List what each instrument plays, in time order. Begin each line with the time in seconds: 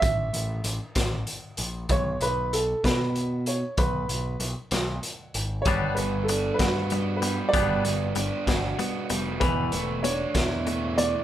0.00 picked electric bass A1, upright piano E5, kick, closed hi-hat
0.33 picked electric bass A1, closed hi-hat
0.64 picked electric bass A1, closed hi-hat
0.95 picked electric bass A1, kick, snare, closed hi-hat
1.27 closed hi-hat
1.57 picked electric bass A#1, closed hi-hat
1.89 picked electric bass B1, upright piano C#5, kick, closed hi-hat
2.20 picked electric bass B1, upright piano B4, closed hi-hat
2.53 upright piano A4, closed hi-hat
2.84 picked electric bass B2, upright piano B4, kick, snare, closed hi-hat
3.16 closed hi-hat
3.46 upright piano C#5, closed hi-hat
3.77 picked electric bass B1, upright piano B4, kick, closed hi-hat
4.09 picked electric bass B1, closed hi-hat
4.40 picked electric bass B1, closed hi-hat
4.71 picked electric bass B1, snare, closed hi-hat
5.03 closed hi-hat
5.34 picked electric bass G#1, closed hi-hat
5.62 picked electric bass G1, upright piano C#5, closed hi-hat
5.66 clean electric guitar G3 B3 D4, kick
5.95 picked electric bass G1, clean electric guitar G3 B3, upright piano B4, closed hi-hat
6.23 upright piano A4
6.28 clean electric guitar G3 B3, overdriven electric guitar D4, closed hi-hat
6.54 upright piano B4
6.59 picked electric bass G2, clean electric guitar G3 B3, overdriven electric guitar F#4, kick, snare, closed hi-hat
6.90 clean electric guitar G3 B3, closed hi-hat
7.17 upright piano B4
7.22 clean electric guitar G3 B3, closed hi-hat
7.49 upright piano D5
7.53 picked electric bass G1, clean electric guitar G3 B3 D4, kick, closed hi-hat
7.85 picked electric bass G1, clean electric guitar G3 B3, closed hi-hat
8.15 picked electric bass G1, clean electric guitar G3 B3, overdriven electric guitar D4, closed hi-hat
8.47 picked electric bass G1, clean electric guitar G3 B3, overdriven electric guitar F#4, kick, snare, closed hi-hat
8.79 clean electric guitar G3 B3, closed hi-hat
9.09 picked electric bass F1, clean electric guitar G3 B3, closed hi-hat
9.40 picked electric bass E1, clean electric guitar E2 B2 E3, upright piano B4, kick, closed hi-hat
9.72 picked electric bass E1, clean electric guitar E2 B2, overdriven electric guitar A3, closed hi-hat
10.03 clean electric guitar E2 B2, overdriven electric guitar D4, upright piano C#5, closed hi-hat
10.35 picked electric bass E2, clean electric guitar E2 B2, overdriven electric guitar E4, kick, snare, closed hi-hat
10.67 clean electric guitar E2 B2, overdriven electric guitar A3, closed hi-hat
10.98 clean electric guitar E2 B2, overdriven electric guitar E3, upright piano D5, closed hi-hat